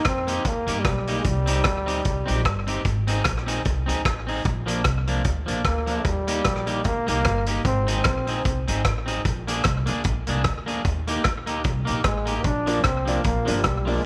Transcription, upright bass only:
0.06 F2
0.45 D#2
0.67 G2
0.85 B1
1.25 C2
1.66 D2
2.06 C2
2.29 A#1
2.45 G1
2.85 G#1
3.25 A#1
3.66 C2
3.89 D2
4.05 A1
4.46 A#1
4.85 C2
5.25 D2
5.48 A#1
5.65 D2
6.05 D#2
6.45 A#1
6.85 D2
7.08 C2
7.25 G1
7.65 G#1
8.05 A#1
8.45 C2
8.68 G#1
8.85 A1
9.25 A#1
9.65 C2
9.89 D2
10.05 A#1
10.29 C2
10.45 D2
10.85 D#2
11.25 D2
11.65 C2
11.89 A#1
12.05 A1
12.45 A#1
12.84 C2
13.25 A#1
13.48 G1
13.65 B1

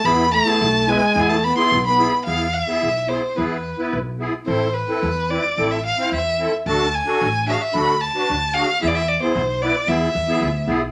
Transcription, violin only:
0.05 B5
0.33 A5
0.89 G#5
1.29 A5
1.44 B5
1.58 C6
1.86 B5
2.25 F5
2.53 F5
2.64 E5
3.09 C5
3.36 B4
4.47 C5
4.74 B4
5.30 D5
5.71 E5
5.86 F5
6.14 E5
6.67 A5
6.95 G#5
7.48 E5
7.53 F5
7.62 E5
7.73 B5
8.01 A5
8.54 F5
8.82 E5
8.88 D5
8.95 E5
9.08 D5
9.22 C5
9.62 D5
9.88 E5

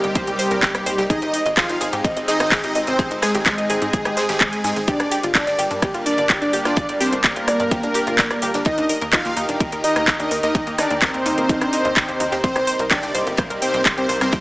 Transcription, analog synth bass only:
0.04 G1
0.15 C2
0.27 C2
0.51 C2
0.63 C2
0.75 C2
0.86 C2
0.98 C2
1.10 G#1
1.22 G#1
1.46 G#1
1.57 G#1
1.69 G#1
1.81 G#1
1.93 G#2
2.04 G#1
2.16 G#1
2.40 G#1
2.52 G#1
2.64 G#1
2.75 G#1
2.87 G#1
2.99 G#1
3.11 G#1
3.35 G#1
3.46 G#1
3.58 G#1
3.70 G#1
3.82 G#2
3.93 G#1
4.05 G#1
4.29 G#1
4.41 G#1
4.53 D#2
4.64 G#2
4.76 G#1
4.88 G1
5.00 G1
5.23 G1
5.35 G1
5.47 G1
5.59 G1
5.71 G2
5.82 G1
5.94 G1
6.18 G1
6.30 G1
6.42 G1
6.53 G1
6.65 G1
6.77 G1
6.89 G1
7.12 G1
7.24 G1
7.36 G1
7.48 G1
7.60 G2
7.71 G1
7.83 G1
8.07 G1
8.19 G1
8.31 G1
8.42 G1
8.54 G1
8.66 D#2
8.78 D#2
9.02 D#2
9.13 D#2
9.25 D#2
9.37 D#2
9.49 D#1
9.60 D#2
9.72 D#2
9.96 D#2
10.08 D#2
10.20 D#2
10.31 D#2
10.43 D#2
10.55 D#2
10.67 D#2
10.90 D#2
11.02 D#2
11.14 D#2
11.26 D#2
11.38 D#1
11.49 D#2
11.61 D#2
11.85 D#2
11.97 D#2
12.08 D#2
12.20 D#2
12.32 D#2
12.44 C2
12.56 C2
12.79 C2
12.91 C2
13.03 C2
13.15 C2
13.27 G1
13.38 C2
13.50 C2
13.74 C2
13.86 C2
13.98 C2
14.09 C2
14.21 C2
14.33 C2

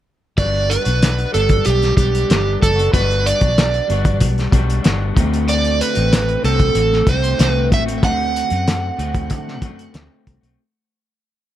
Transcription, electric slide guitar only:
0.38 D5
0.70 B4
1.34 A4
1.66 G4
1.97 G4
2.62 A4
2.94 B4
3.26 D5
5.49 D5
5.81 B4
6.45 A4
7.09 C5
7.51 B4
7.74 E5
8.05 F#5

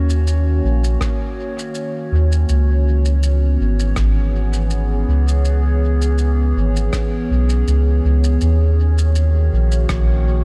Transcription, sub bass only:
Already playing: D#2
0.64 A#1
2.12 D#2
2.49 C#2
3.60 G#1
3.97 G#1
5.08 C#2
6.56 G#1
7.30 B1
7.67 C#2
8.04 C#2
8.42 D#2
9.53 A#1
9.89 A#1

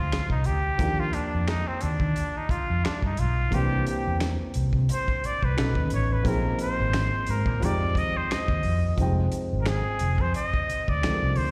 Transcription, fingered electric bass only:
0.31 C2
0.47 D2
0.80 D#2
1.35 F2
1.83 D#2
2.01 D#3
2.50 muted fingered electric bass stroke
2.70 F2
3.03 G2
3.19 B1
3.53 C2
4.07 E2
4.56 C2
4.74 C3
5.25 muted fingered electric bass stroke
5.43 C2
5.59 B1
5.76 D#2
5.93 A1
6.26 A#1
6.80 G#1
7.29 G#2
7.47 A#2
7.62 F2
7.96 D#2
8.31 muted fingered electric bass stroke
8.49 D#2
8.65 F2
8.99 F1
9.53 G#1
10.01 F1
10.19 F2
10.69 muted fingered electric bass stroke
10.89 D2
11.23 C2
11.37 D2

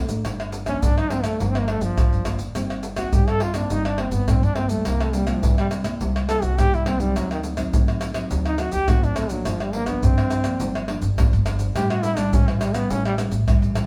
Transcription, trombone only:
0.67 C#4
0.83 D4
0.99 D#4
1.11 C4
1.24 A3
1.40 A#3
1.50 C4
1.59 A#3
1.69 A3
1.82 F3
2.97 F#4
3.13 G4
3.29 A4
3.42 F4
3.56 D4
3.72 D#4
3.87 D4
4.00 C4
4.12 B3
4.29 C4
4.44 D4
4.57 C4
4.70 A3
4.86 A#3
5.02 A3
5.14 G3
5.28 F3
5.44 E3
5.59 G3
6.29 A4
6.43 F#4
6.59 G4
6.74 E4
6.86 C4
7.00 G3
7.16 F#3
7.32 D#3
8.47 D#4
8.59 F#4
8.72 G4
8.89 F#4
9.04 D4
9.17 A3
9.30 F#3
9.46 F3
9.61 G3
9.74 A#3
9.87 B3
10.04 C4
11.76 G4
11.91 F#4
12.03 E4
12.17 D4
12.34 C#4
12.49 E3
12.61 G3
12.75 B3
12.91 C#4
13.06 G3

